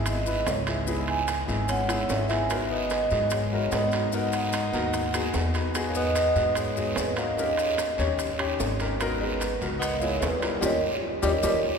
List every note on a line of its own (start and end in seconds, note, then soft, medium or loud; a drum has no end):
0.00 0.43 G#1 medium
0.00 0.14 B3 medium
0.00 0.15 D#4 medium
0.00 0.15 E4 medium
0.00 0.15 G#4 medium
0.06 0.46 D#5 medium
0.06 high timbale medium
0.06 long guiro medium
0.06 maracas medium
0.26 0.55 B3 medium
0.26 0.55 D#4 medium
0.26 0.55 E4 medium
0.26 0.55 B4 medium
0.26 maracas medium
0.46 1.43 C#2 medium
0.46 0.67 C#5 medium
0.46 high timbale medium
0.46 low timbale medium
0.46 short guiro medium
0.46 maracas medium
0.66 0.81 B3 medium
0.66 0.81 D#4 medium
0.66 0.82 E4 medium
0.66 0.82 G#4 medium
0.66 0.78 E5 medium
0.66 high timbale medium
0.66 short guiro medium
0.66 maracas soft
0.86 1.30 B3 medium
0.86 1.30 D#4 medium
0.86 1.30 E4 medium
0.86 1.31 G#4 medium
0.86 long guiro medium
0.86 maracas medium
1.08 1.71 G#5 loud
1.08 high timbale medium
1.28 high timbale medium
1.28 low timbale medium
1.28 short guiro medium
1.28 maracas medium
1.46 2.05 G#1 medium
1.46 1.76 B3 medium
1.46 1.76 D#4 medium
1.46 1.77 E4 medium
1.46 1.77 G#4 medium
1.46 short guiro medium
1.46 maracas soft
1.68 2.07 C#4 medium
1.68 2.12 F#5 medium
1.68 high timbale medium
1.68 long guiro medium
1.68 maracas medium
1.87 2.17 B3 medium
1.87 2.17 D#4 medium
1.87 2.17 E4 medium
1.87 2.18 G#4 medium
1.87 high timbale loud
1.87 maracas medium
2.09 3.05 G#1 medium
2.09 2.28 C#4 medium
2.09 2.29 E5 medium
2.09 low timbale medium
2.09 short guiro medium
2.09 maracas medium
2.28 2.43 B3 medium
2.28 2.44 D#4 medium
2.28 2.48 E4 medium
2.28 2.44 E4 medium
2.28 2.44 G#4 medium
2.28 2.50 G#5 medium
2.28 high timbale medium
2.28 short guiro medium
2.28 maracas soft
2.49 2.92 B3 medium
2.49 2.93 D#4 medium
2.49 2.93 F#4 medium
2.49 2.93 A#4 medium
2.49 high timbale medium
2.49 long guiro medium
2.49 maracas medium
2.71 3.28 B3 medium
2.71 3.34 D#5 medium
2.90 high timbale medium
2.90 low timbale medium
2.90 short guiro medium
2.90 maracas medium
3.10 3.68 G#2 medium
3.10 3.39 B3 medium
3.10 3.39 D#4 medium
3.10 3.40 F#4 medium
3.10 3.40 G#4 medium
3.10 short guiro medium
3.10 maracas soft
3.30 3.69 G#3 medium
3.30 high timbale medium
3.30 long guiro medium
3.30 maracas medium
3.52 3.80 B3 medium
3.52 3.81 D#4 medium
3.52 3.81 F#4 medium
3.52 3.81 A#4 medium
3.72 4.68 G#2 medium
3.72 4.10 B3 medium
3.72 4.11 D#5 medium
3.72 high timbale medium
3.72 low timbale medium
3.72 short guiro medium
3.72 maracas medium
3.91 4.06 B3 medium
3.91 4.07 D#4 medium
3.91 4.07 F#4 medium
3.91 4.07 A#4 medium
3.91 high timbale medium
3.91 short guiro medium
3.91 maracas soft
4.12 4.55 B3 medium
4.12 4.55 D#4 medium
4.12 5.51 D#4 medium
4.12 4.56 F#4 medium
4.12 4.56 A#4 medium
4.12 5.52 F#5 medium
4.12 long guiro medium
4.12 maracas medium
4.32 high timbale medium
4.32 maracas medium
4.52 high timbale medium
4.52 low timbale medium
4.52 short guiro medium
4.52 maracas medium
4.72 5.30 D#2 medium
4.72 5.01 B3 medium
4.72 5.02 D#4 medium
4.72 5.02 F#4 medium
4.72 5.02 A#4 medium
4.72 short guiro medium
4.72 maracas soft
4.94 high timbale medium
4.94 long guiro medium
4.94 maracas medium
5.13 5.42 B3 medium
5.13 5.43 D#4 medium
5.13 5.43 F#4 medium
5.13 5.43 G#4 medium
5.13 high timbale medium
5.13 maracas medium
5.34 6.30 E2 medium
5.34 low timbale medium
5.34 short guiro medium
5.34 maracas medium
5.54 5.69 B3 medium
5.54 5.69 D#4 medium
5.54 5.69 F#4 medium
5.54 5.69 B4 medium
5.54 high timbale medium
5.54 short guiro medium
5.54 maracas soft
5.75 6.18 B3 medium
5.75 6.18 D#4 medium
5.75 6.18 F#4 medium
5.75 6.18 G#4 loud
5.75 high timbale medium
5.75 long guiro medium
5.75 maracas medium
5.88 5.95 A#3 medium
5.88 5.95 C#5 medium
5.95 6.53 B3 medium
5.95 6.53 D#5 loud
5.95 maracas medium
6.15 high timbale medium
6.15 low timbale medium
6.15 short guiro medium
6.15 maracas medium
6.35 6.93 G#2 medium
6.35 6.64 B3 medium
6.35 6.65 D#4 medium
6.35 6.65 F#4 medium
6.35 6.65 G#4 medium
6.35 short guiro medium
6.35 maracas soft
6.55 6.94 G#3 medium
6.55 high timbale medium
6.55 long guiro medium
6.55 maracas medium
6.76 7.05 B3 medium
6.76 7.05 D#4 medium
6.76 7.05 F#4 medium
6.76 7.06 G#4 medium
6.76 maracas medium
6.96 7.92 D#2 medium
6.96 7.16 G#3 medium
6.96 7.19 B4 medium
6.96 high timbale medium
6.96 low timbale medium
6.96 short guiro medium
6.96 maracas medium
7.16 7.74 A#3 medium
7.16 7.32 B3 medium
7.16 7.32 D#4 medium
7.16 7.32 F#4 medium
7.16 7.32 A#4 medium
7.16 7.75 D#5 medium
7.16 high timbale medium
7.16 short guiro medium
7.16 maracas soft
7.37 7.80 C#4 medium
7.37 7.80 D#4 medium
7.37 7.81 G4 medium
7.37 7.81 A#4 medium
7.37 long guiro medium
7.37 maracas medium
7.57 high timbale medium
7.57 maracas medium
7.77 high timbale medium
7.77 low timbale medium
7.77 short guiro medium
7.77 maracas medium
7.98 8.56 D#2 medium
7.98 8.27 C#4 medium
7.98 8.27 D#4 medium
7.98 8.27 G4 medium
7.98 8.27 C#5 medium
7.98 short guiro medium
7.98 maracas soft
8.18 high timbale medium
8.18 long guiro medium
8.18 maracas medium
8.38 8.67 C#4 medium
8.38 8.67 D#4 medium
8.38 8.68 G4 medium
8.38 8.68 C#5 medium
8.38 high timbale loud
8.59 9.55 G#1 medium
8.59 low timbale medium
8.59 short guiro medium
8.59 maracas medium
8.79 8.94 C#4 medium
8.79 8.94 D#4 medium
8.79 8.94 G4 medium
8.79 8.95 A#4 medium
8.79 high timbale medium
8.79 short guiro medium
8.79 maracas soft
9.00 9.42 B3 loud
9.00 9.43 D#4 medium
9.00 9.43 F#4 medium
9.00 9.44 A#4 loud
9.00 high timbale medium
9.00 long guiro medium
9.00 maracas medium
9.20 9.58 G#3 medium
9.20 9.59 B4 medium
9.40 high timbale medium
9.40 low timbale medium
9.40 short guiro medium
9.40 maracas medium
9.61 10.18 C#2 medium
9.61 9.81 B3 medium
9.61 9.82 D#4 medium
9.61 9.82 F#4 medium
9.61 9.82 A#4 medium
9.61 short guiro medium
9.61 maracas soft
9.79 9.98 B3 medium
9.79 10.01 D#5 loud
9.79 high timbale medium
9.79 long guiro medium
9.79 maracas medium
9.99 10.19 A#3 medium
9.99 10.29 B3 medium
9.99 10.30 D#4 medium
9.99 10.30 E4 medium
9.99 10.30 G#4 medium
9.99 10.22 C#5 medium
9.99 maracas medium
10.20 10.59 D#2 medium
10.20 10.29 G#3 medium
10.20 10.30 B4 medium
10.20 high timbale medium
10.20 low timbale medium
10.20 short guiro medium
10.20 maracas medium
10.39 10.59 G3 medium
10.39 10.56 B3 medium
10.39 10.56 D#4 medium
10.39 10.57 E4 medium
10.39 10.60 A#4 medium
10.39 high timbale medium
10.39 short guiro medium
10.39 maracas soft
10.43 10.57 A#4 medium
10.61 10.77 D#2 medium
10.61 10.71 G3 medium
10.61 10.75 C#4 loud
10.61 10.75 D#4 medium
10.61 10.75 G4 medium
10.61 10.76 A#4 medium
10.61 10.75 C#5 medium
10.61 10.76 D#5 medium
10.61 high timbale loud
10.61 long guiro medium
10.61 maracas loud
11.22 11.38 D#2 medium
11.22 11.32 G3 medium
11.22 11.36 C#4 medium
11.22 11.36 D#4 medium
11.22 11.36 G4 medium
11.22 11.37 A#4 medium
11.22 11.37 C#5 medium
11.22 11.37 D#5 medium
11.22 high timbale medium
11.22 long guiro medium
11.22 maracas loud
11.43 11.59 D#2 medium
11.43 11.53 G3 medium
11.43 11.56 C#4 medium
11.43 11.56 D#4 medium
11.43 11.56 G4 medium
11.43 11.58 A#4 medium
11.43 11.58 C#5 medium
11.43 11.58 D#5 medium
11.43 high timbale medium
11.43 long guiro medium
11.43 maracas medium